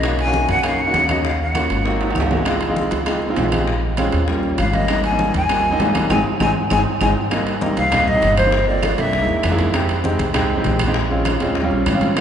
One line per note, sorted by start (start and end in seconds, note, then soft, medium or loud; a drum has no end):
0.00 0.43 B1 medium
0.00 0.19 A#3 medium
0.00 0.19 C#4 medium
0.00 0.19 D#4 medium
0.00 0.19 D#5 medium
0.00 high bongo medium
0.00 high conga soft
0.00 high timbale medium
0.00 claves medium
0.04 0.20 F#4 medium
0.19 0.47 G#5 loud
0.19 high conga soft
0.19 high timbale medium
0.25 0.52 A#3 medium
0.25 0.53 C#4 medium
0.25 0.53 D#4 medium
0.25 0.53 F#4 medium
0.33 high bongo medium
0.33 high conga medium
0.48 0.91 F#2 medium
0.48 0.64 F#5 medium
0.48 high bongo soft
0.48 high conga medium
0.48 high timbale medium
0.63 0.79 A#3 medium
0.63 0.80 C#4 medium
0.63 0.80 D#4 medium
0.63 0.80 F#4 medium
0.63 0.82 F5 medium
0.63 high bongo medium
0.63 high conga soft
0.63 high timbale medium
0.63 claves medium
0.79 1.12 F#5 medium
0.79 high bongo soft
0.79 high conga soft
0.86 0.92 A#3 medium
0.86 0.92 C#4 medium
0.86 0.92 D#4 medium
0.86 0.92 F#4 medium
0.93 1.65 D#2 medium
0.93 1.04 A#3 medium
0.93 1.05 C#4 medium
0.93 1.05 D#4 medium
0.93 1.05 F#4 medium
0.93 high bongo soft
0.93 low bongo medium
0.93 high conga medium
0.93 high timbale medium
0.93 low timbale medium
1.08 1.24 A#3 medium
1.08 1.24 C#4 medium
1.08 1.25 D#4 medium
1.08 1.25 F#4 medium
1.08 1.28 D#5 medium
1.08 high bongo soft
1.08 high conga medium
1.08 high timbale medium
1.08 claves medium
1.25 1.41 F5 medium
1.25 high bongo medium
1.25 high conga soft
1.40 1.97 F#5 medium
1.40 high conga soft
1.54 1.76 A#3 medium
1.54 1.76 C#4 medium
1.54 1.76 F4 medium
1.54 1.77 F#4 medium
1.54 high bongo medium
1.54 high conga medium
1.54 high timbale medium
1.54 claves medium
1.70 2.13 G#1 medium
1.70 high bongo soft
1.70 high timbale medium
1.84 2.17 A#3 medium
1.84 2.17 C4 medium
1.84 2.18 D#4 medium
1.84 2.18 F#4 medium
1.84 high bongo medium
1.84 high conga soft
2.01 high bongo soft
2.01 high conga soft
2.01 high timbale medium
2.10 high timbale medium
2.15 2.86 C#2 medium
2.15 high bongo soft
2.15 low bongo medium
2.15 high conga medium
2.15 claves medium
2.20 low timbale loud
2.30 2.41 A#3 medium
2.30 2.41 C4 medium
2.30 2.42 D#4 medium
2.30 2.42 F#4 medium
2.30 high bongo soft
2.30 high conga medium
2.30 low timbale medium
2.45 2.62 G#3 medium
2.45 2.62 C4 medium
2.45 2.62 D#4 medium
2.45 2.62 F4 medium
2.45 high bongo medium
2.45 high conga soft
2.45 high timbale medium
2.45 claves medium
2.61 high conga soft
2.61 high timbale medium
2.68 2.95 G#3 medium
2.68 2.95 C4 medium
2.68 2.96 D#4 medium
2.68 2.96 F4 medium
2.76 high bongo medium
2.76 high conga medium
2.91 3.34 C#2 medium
2.91 high bongo soft
2.91 high conga medium
2.91 high timbale medium
3.06 3.22 G#3 medium
3.06 3.23 C4 medium
3.06 3.23 D#4 medium
3.06 3.23 F4 medium
3.06 high bongo medium
3.06 high conga soft
3.06 high timbale medium
3.06 claves medium
3.22 high bongo soft
3.22 high conga soft
3.29 3.34 G#3 medium
3.29 3.35 C4 medium
3.29 3.35 D#4 medium
3.29 3.35 F4 loud
3.36 4.07 A#1 medium
3.36 3.47 G#3 medium
3.36 3.48 C4 medium
3.36 3.48 D#4 medium
3.36 3.48 F4 medium
3.36 high bongo soft
3.36 low bongo medium
3.36 high conga medium
3.36 high timbale medium
3.36 low timbale medium
3.52 3.67 G#3 medium
3.52 3.67 C4 medium
3.52 3.68 D#4 medium
3.52 3.68 G4 medium
3.52 high bongo soft
3.52 high conga medium
3.52 high timbale medium
3.52 claves medium
3.67 high bongo medium
3.67 high conga soft
3.83 high conga soft
3.97 4.19 G#3 medium
3.97 4.19 C4 medium
3.97 4.19 C#4 medium
3.97 4.20 F4 loud
3.97 high bongo medium
3.97 high conga medium
3.97 high timbale medium
3.97 claves medium
4.12 4.55 D#2 medium
4.12 high bongo soft
4.12 high timbale medium
4.27 4.60 G3 medium
4.27 4.60 A#3 medium
4.27 4.60 C#4 medium
4.27 4.61 F4 medium
4.27 high bongo medium
4.27 high conga soft
4.43 high bongo soft
4.43 high conga soft
4.58 5.29 G#1 medium
4.58 4.75 F5 medium
4.58 high bongo soft
4.58 low bongo medium
4.58 high conga medium
4.58 high timbale medium
4.58 claves medium
4.73 4.84 G3 medium
4.73 4.84 A#3 medium
4.73 4.85 C#4 medium
4.73 4.85 F4 medium
4.73 5.04 D#5 medium
4.73 high bongo soft
4.73 high conga medium
4.73 high timbale medium
4.88 5.04 G3 medium
4.88 5.05 A#3 medium
4.88 5.05 C4 medium
4.88 5.05 D#4 medium
4.88 high bongo medium
4.88 high timbale medium
4.88 claves medium
5.04 5.32 G#5 medium
5.04 high conga soft
5.04 high timbale medium
5.11 5.38 G3 medium
5.11 5.38 A#3 medium
5.11 5.39 C4 medium
5.11 5.39 D#4 medium
5.19 high bongo medium
5.19 high conga loud
5.34 5.76 D#2 medium
5.34 6.07 G#5 loud
5.34 high bongo soft
5.34 high conga medium
5.34 high timbale medium
5.49 5.65 G3 medium
5.49 5.65 A#3 medium
5.49 5.66 C4 medium
5.49 5.66 F4 medium
5.49 high bongo medium
5.49 high conga soft
5.49 high timbale medium
5.49 claves medium
5.65 high bongo soft
5.65 high conga soft
5.71 5.77 G3 medium
5.71 5.77 A#3 medium
5.71 5.77 C4 medium
5.71 5.78 D#4 loud
5.79 6.08 G#1 medium
5.79 5.90 G3 medium
5.79 5.90 A#3 medium
5.79 5.91 C4 medium
5.79 5.91 D#4 medium
5.79 high bongo soft
5.79 low bongo medium
5.79 high conga medium
5.79 high timbale medium
5.79 low timbale medium
5.94 6.10 G3 medium
5.94 6.10 A#3 medium
5.94 6.09 C4 medium
5.94 6.09 D#4 medium
5.94 high bongo soft
5.94 high conga medium
5.94 high timbale medium
5.94 claves medium
6.10 6.22 G#1 medium
6.10 6.20 G#3 medium
6.10 6.20 C4 medium
6.10 6.20 D#4 medium
6.10 6.20 G#5 medium
6.10 low bongo loud
6.10 high conga medium
6.10 high timbale medium
6.10 claves medium
6.40 6.52 G#1 medium
6.40 6.50 G#3 medium
6.40 6.50 C4 medium
6.40 6.50 D#4 medium
6.40 6.51 G#5 medium
6.40 low bongo medium
6.40 high conga medium
6.40 high timbale medium
6.40 claves medium
6.70 6.82 G#1 medium
6.70 6.81 G#3 medium
6.70 6.81 C4 medium
6.70 6.81 D#4 medium
6.70 6.81 G#5 medium
6.70 low bongo medium
6.70 high conga medium
6.70 high timbale medium
6.70 claves medium
7.01 7.12 G#1 medium
7.01 7.11 G#3 medium
7.01 7.11 C4 medium
7.01 7.11 D#4 medium
7.01 7.11 G#5 medium
7.01 low bongo medium
7.01 high conga medium
7.01 high timbale medium
7.01 claves medium
7.30 7.52 G3 medium
7.30 7.53 A#3 medium
7.30 7.53 C4 medium
7.30 7.53 D#4 medium
7.30 high bongo medium
7.30 high conga soft
7.30 high timbale medium
7.30 claves medium
7.47 high conga soft
7.47 high timbale medium
7.60 7.82 G3 medium
7.60 7.82 A#3 medium
7.60 7.83 C4 medium
7.60 7.83 D#4 medium
7.60 high bongo medium
7.60 high conga loud
7.77 8.19 C2 medium
7.77 8.09 F5 loud
7.77 high bongo soft
7.77 high conga medium
7.77 high timbale medium
7.90 8.07 G3 medium
7.90 8.07 A#3 medium
7.90 8.08 C4 medium
7.90 8.08 D#4 medium
7.90 high bongo medium
7.90 high conga soft
7.90 low conga medium
7.90 high timbale medium
7.90 claves medium
8.07 8.37 D#5 loud
8.07 high bongo soft
8.07 high conga soft
8.07 low conga medium
8.14 8.36 G3 medium
8.14 8.36 A#3 medium
8.14 8.36 C4 medium
8.14 8.37 D#4 medium
8.22 8.93 G1 medium
8.22 high bongo soft
8.22 low bongo medium
8.22 high conga medium
8.22 high timbale medium
8.37 8.66 C5 medium
8.37 high bongo soft
8.37 high conga medium
8.37 high timbale medium
8.37 claves medium
8.45 8.53 G3 medium
8.45 8.53 A#3 medium
8.45 8.53 C4 medium
8.45 8.53 D#4 medium
8.52 high bongo medium
8.52 high conga soft
8.68 8.89 A3 medium
8.68 8.89 A#3 medium
8.68 8.90 C4 medium
8.68 8.90 F4 medium
8.68 9.01 D5 medium
8.68 high conga soft
8.83 high bongo medium
8.83 high conga medium
8.83 high timbale medium
8.83 claves medium
8.98 9.27 C2 loud
8.98 9.13 A3 medium
8.98 9.13 A#3 medium
8.98 9.14 C4 medium
8.98 9.14 D4 medium
8.98 9.59 E5 loud
8.98 high bongo soft
8.98 high timbale medium
9.13 high bongo medium
9.13 high conga soft
9.21 9.42 G#3 medium
9.21 9.42 A#3 medium
9.21 9.43 D#4 medium
9.21 9.43 E4 medium
9.28 9.43 D#2 medium
9.28 high bongo soft
9.28 high conga soft
9.43 10.14 F2 medium
9.43 high bongo soft
9.43 low bongo medium
9.43 high conga medium
9.43 high timbale medium
9.43 low timbale medium
9.43 claves medium
9.51 9.67 G#3 medium
9.51 9.67 A#3 medium
9.51 9.67 D#4 medium
9.51 9.68 E4 loud
9.59 high bongo soft
9.59 high conga medium
9.59 high timbale medium
9.73 9.95 G#3 medium
9.73 9.95 C4 medium
9.73 9.95 D#4 medium
9.73 9.96 G4 medium
9.73 high bongo medium
9.73 high conga soft
9.73 high timbale medium
9.73 claves medium
9.89 high conga soft
9.89 high timbale medium
10.03 10.25 G#3 medium
10.03 10.25 C4 medium
10.03 10.26 D#4 medium
10.03 10.26 G4 medium
10.03 high bongo medium
10.03 high conga loud
10.19 10.62 C2 medium
10.19 high bongo soft
10.19 high conga loud
10.19 high timbale medium
10.33 10.50 G#3 medium
10.33 10.50 C4 medium
10.33 10.51 D#4 medium
10.33 10.51 G4 loud
10.33 high bongo medium
10.33 high conga soft
10.33 low conga medium
10.33 high timbale medium
10.33 claves medium
10.50 high bongo soft
10.50 high conga soft
10.56 10.78 G#3 medium
10.56 10.78 C4 medium
10.56 10.79 D#4 medium
10.56 10.79 G4 medium
10.64 11.35 A#1 medium
10.64 high bongo soft
10.64 low bongo medium
10.64 high conga medium
10.64 high timbale medium
10.79 high bongo soft
10.79 high conga medium
10.79 high timbale loud
10.79 claves medium
10.87 10.95 G#3 medium
10.87 10.95 C4 medium
10.87 10.96 D#4 medium
10.87 10.96 G4 loud
10.94 high bongo medium
10.94 high conga soft
11.10 11.31 G#3 medium
11.10 11.32 C4 medium
11.10 11.32 C#4 medium
11.10 11.32 F4 medium
11.10 high conga soft
11.25 high bongo medium
11.25 high conga medium
11.25 high timbale medium
11.25 claves medium
11.40 11.69 D#2 medium
11.40 11.56 G#3 medium
11.40 11.56 C4 medium
11.40 11.56 C#4 medium
11.40 11.57 F4 medium
11.40 high bongo soft
11.40 high timbale medium
11.55 high bongo medium
11.55 high conga soft
11.62 11.84 G3 medium
11.62 11.85 C4 medium
11.62 11.85 C#4 medium
11.62 11.85 F4 loud
11.71 11.85 A#1 medium
11.71 high bongo soft
11.71 high conga soft
11.86 12.21 G#1 medium
11.86 high bongo soft
11.86 low bongo medium
11.86 high conga medium
11.86 high timbale loud
11.86 claves medium
11.93 12.09 G3 medium
11.93 12.10 C4 medium
11.93 12.10 C#4 medium
11.93 12.11 F4 medium
12.01 high bongo soft
12.01 high conga medium
12.01 high timbale medium
12.16 12.21 A#3 medium
12.16 12.21 C4 medium
12.16 12.21 D#4 medium
12.16 12.21 F4 medium
12.16 high bongo medium
12.16 high conga soft
12.16 high timbale medium
12.16 claves medium